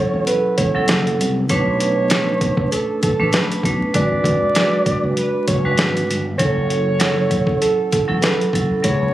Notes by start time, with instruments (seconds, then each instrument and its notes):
Already playing: vibraphone F#3 C#4 E4 A4, tenor saxophone C#5
0.14 fretless electric bass E1
0.27 tenor saxophone B4, closed hi-hat
0.57 fretless electric bass E1, tenor saxophone C#5, kick, closed hi-hat
0.75 vibraphone F#3 C#4 E4 A4
0.88 fretless electric bass F#1, snare, closed hi-hat
1.07 closed hi-hat
1.19 fretless electric bass C2, closed hi-hat
1.49 fretless electric bass B1, vibraphone A3 C#4 D4 B4, tenor saxophone C#5, kick, closed hi-hat
1.80 closed hi-hat
2.10 vibraphone A3 C#4 D4 B4, snare, closed hi-hat
2.41 kick, closed hi-hat
2.57 kick
2.71 tenor saxophone A4, closed hi-hat
3.02 tenor saxophone A4, kick, closed hi-hat
3.19 fretless electric bass A1, vibraphone A3 C#4 D4 B4
3.33 tenor saxophone B4, snare, closed hi-hat
3.52 closed hi-hat
3.63 fretless electric bass B1, vibraphone A3 C#4 D4 B4, kick, closed hi-hat
3.94 fretless electric bass G#1, vibraphone G#3 D4 F#4 B4, tenor saxophone D5, kick, closed hi-hat
4.24 fretless electric bass G#1, kick, closed hi-hat
4.55 vibraphone G#3 D4 F#4 B4, snare, closed hi-hat
4.86 kick, closed hi-hat
5.03 fretless electric bass F#1
5.17 tenor saxophone B4, closed hi-hat
5.47 fretless electric bass F#1, tenor saxophone C#5, kick, closed hi-hat
5.65 vibraphone G#3 D4 F#4 B4
5.78 fretless electric bass G#1, snare, closed hi-hat
5.97 closed hi-hat
6.09 fretless electric bass G1, closed hi-hat
6.38 fretless electric bass F#1, vibraphone F#3 C#4 E4 A4, tenor saxophone C#5, kick, closed hi-hat
6.70 closed hi-hat
7.00 vibraphone F#3 C#4 E4 A4, snare, closed hi-hat
7.31 kick, closed hi-hat
7.47 kick
7.61 tenor saxophone A4, closed hi-hat
7.92 tenor saxophone A4, kick, closed hi-hat
8.08 fretless electric bass E1, vibraphone F#3 C#4 E4 A4
8.22 tenor saxophone B4, snare, closed hi-hat
8.41 closed hi-hat
8.53 fretless electric bass F#1, vibraphone F#3 C#4 E4 A4, kick, closed hi-hat
8.83 fretless electric bass C#2, vibraphone F#3 B3 C#4 G#4, tenor saxophone C#5, kick, closed hi-hat